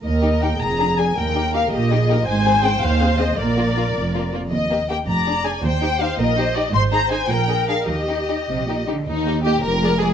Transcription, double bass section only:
X:1
M:6/8
L:1/8
Q:3/8=107
K:Eb
V:1 name="Double bass section" clef=bass
E,,3 F,,,3 | E,,3 B,,,3 | A,,,3 E,,3 | B,,,3 F,,,3 |
E,,3 F,,,3 | E,,3 B,,,3 | A,,,3 B,,,3 | E,,3 B,,,3 |
E,,3 F,,,3 |]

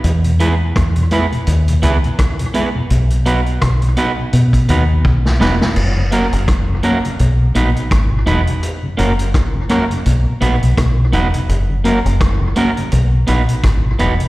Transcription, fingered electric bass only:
X:1
M:4/4
L:1/16
Q:"Swing 16ths" 1/4=84
K:B
V:1 name="Fingered electric bass" clef=bass
E,,4 E,,2 z2 D,,2 C,, z4 z | B,,,4 B,,,2 z2 B,,2 D,,2 B,,,2 E,,, z | F,,,3 F,,,3 z2 B,,,2 A,,, z G,,,2 E,,, z | z2 F,,,4 z2 B,,, z A,,, B,,, B,,,2 E,,, z |
F,,,3 F,,,3 z2 B,,,2 A,,, z G,,,2 E,,, z |]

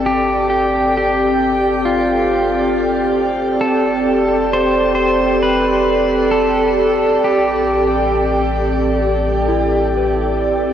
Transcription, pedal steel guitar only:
X:1
M:4/4
L:1/8
Q:1/4=67
K:Gmix
V:1 name="Pedal steel guitar"
G G G2 F3 z | A2 c c B2 A2 | G6 z2 |]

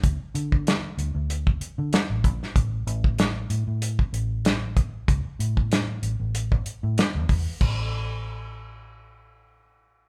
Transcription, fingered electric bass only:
X:1
M:4/4
L:1/16
Q:"Swing 16ths" 1/4=95
K:D
V:1 name="Fingered electric bass" clef=bass
D,, z D,4 D,, D,,3 z D, z A,,, _B,,, z | A,,,2 A,,,4 A,, A,,2 z A,,,6 | C,, z A,,4 A,,, A,,,3 z A,, z E,, E,, z | A,,,16 |]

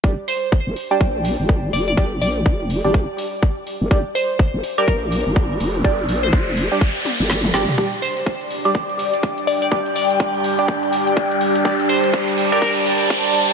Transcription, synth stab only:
X:1
M:4/4
L:1/16
Q:"Swing 16ths" 1/4=124
K:Gm
V:1 name="Synth stab"
[G,DGd] z6 [G,DGd] z8 | [G,DGd] z6 [G,DGd] z8 | [G,DGd] z6 [G,DGd] z8 | [G,DGd] z6 [G,DGd] z6 [G,DGd] z |
[G,DGd] z6 [G,DGd] z8 | [G,DGd] z6 [G,DGd] z8 | [G,DGd] z6 [G,DGd] z8 |]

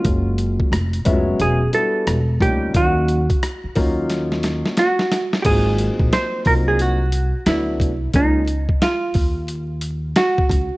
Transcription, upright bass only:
X:1
M:4/4
L:1/16
Q:"Swing 16ths" 1/4=89
K:Abmix
V:1 name="Upright bass" clef=bass
G,,,4 F,,,2 F,,,2 =E,,,2 z2 E,,,2 =D,,2 | E,,4 z2 E,,4- E,, z4 z | A,,,3 B,,, z2 C,,4- C,, z =D,,2 C,,2 | D,,4 z2 E,,6 z2 D,, z |]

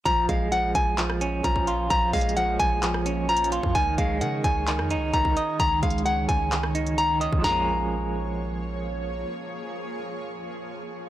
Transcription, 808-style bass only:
X:1
M:4/4
L:1/16
Q:1/4=130
K:Bbm
V:1 name="808-style bass" clef=bass
B,,,2 B,,,4 B,,,6 B,,,4 | B,,,2 B,,,4 B,,,8- B,,, F,, | D,,2 D,,2 D,2 D,,3 F,,3/2 D,,3/2 D,,2 z2 | D,,2 D,,4 D,,8- D,, D,, |
B,,,16 | z16 |]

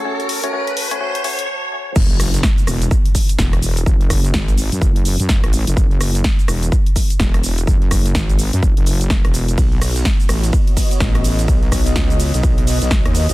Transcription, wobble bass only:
X:1
M:4/4
L:1/16
Q:"Swing 16ths" 1/4=126
K:Bmix
V:1 name="Wobble bass" clef=bass
z16 | F,,,4 z2 E,,,2 z4 E,,,4 | F,,,4 G,,,3 F,, F,,,3 F,,2 A,,,2 F,,, | F,,,4 z2 E,,,2 z4 E,,,4 |
F,,,4 G,,,3 F,, F,,, F,,,4 E,,,3 | B,,,4 z2 A,,,2 z4 A,,,4 | B,,,4 C,,3 B,,, B,,,3 B,,,2 D,,2 B,,, |]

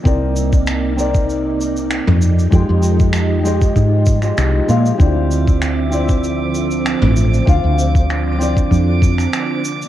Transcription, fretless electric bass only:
X:1
M:4/4
L:1/16
Q:"Swing 16ths" 1/4=97
K:Dphr
V:1 name="Fretless electric bass" clef=bass
C,,12 z F,,2 z | F,, F,,6 z _A,,3 z C,, z B,, z | D,,12 z A,,,2 z | D,, D,,6 z F,,3 z4 z |]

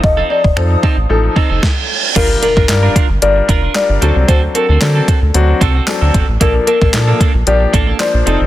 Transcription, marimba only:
X:1
M:4/4
L:1/8
Q:1/4=113
K:Gm
V:1 name="Marimba"
e d c2 A3 z | B B2 z d2 d2 | c B A3 z3 | B B2 z d2 d2 |]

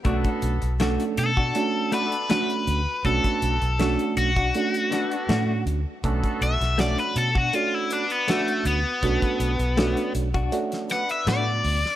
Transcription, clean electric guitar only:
X:1
M:4/4
L:1/16
Q:1/4=80
K:Bm
V:1 name="Clean electric guitar"
[A,DF] z3 [A,DF] z2 [DF] z2 [A,DF] z [A,DF] z3 | z4 [A,DF] z2 [DF] z2 [A,DF] z [A,DF] z3 | z4 [A,DF] z2 [DF] z4 [A,DF] z3 | z4 [A,DF] z2 [DF] z4 [A,DF] z3 |]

